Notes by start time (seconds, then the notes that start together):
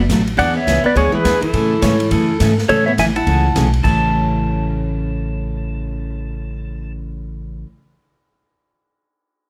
0.09 A1 B2 F#3 A3 D4 F#4, kick, snare, hi-hat pedal, ride
0.27 ride
0.37 E2 E3 B3 D4 G#4 D5 F#5, kick, ride
0.54 B3 C#5 E5
0.67 C#2 E3 B3 D4 G#4, kick, snare, hi-hat pedal, ride
0.84 B3 B4 D5, muted upright bass stroke
0.95 D2 E3 G#3 B3 D4 G#4 C#5, kick, ride
1.12 E3 G#4 B4, muted upright bass stroke
1.25 E2 E3 B3 D4 G#4, kick, snare, hi-hat pedal, ride
1.41 E3 E4 A4, muted upright bass stroke, ride
1.53 A2 C#3 E3 A3 C#4 G#4, kick, ride
1.82 G#2 C#3 E3 A3 C#4 G#4 C#5, kick, snare, hi-hat pedal, ride
2.00 ride
2.11 F#2 C#3 E3 A3 C#4 G#4 A4, kick, ride
2.40 G#2 C#3 E3 A3 C#4 G#4, kick, snare, hi-hat pedal, ride
2.58 snare
2.68 A2 C#3 E3 A3 C#4 G#4 A4 C#5, kick, ride
2.86 B3 C#5 E5
2.98 A1 C#3 E3 A3 C#4 E4 G#4 E5 G#5, kick, snare, hi-hat pedal, ride
3.16 E4 F#5 A5, ride
3.27 C#2 C#3 E3 A3 C#4 G#4, kick, ride
3.55 B1 C#3 E3 A3 C#4 G#4, kick, snare, hi-hat pedal, ride
3.73 ride
3.83 A1 A2 C#3 E3 A3 C#4 E4 A5, kick, crash
4.02 cymbal swell